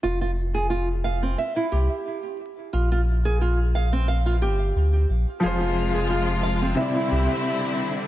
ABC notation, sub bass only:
X:1
M:4/4
L:1/8
Q:"Swing 16ths" 1/4=89
K:Cm
V:1 name="Sub bass" clef=bass
F,,,4 z C,, z2 | B,,,4- B,,, G,,, D,, B,,, | F,,,4 z C,, z2 |]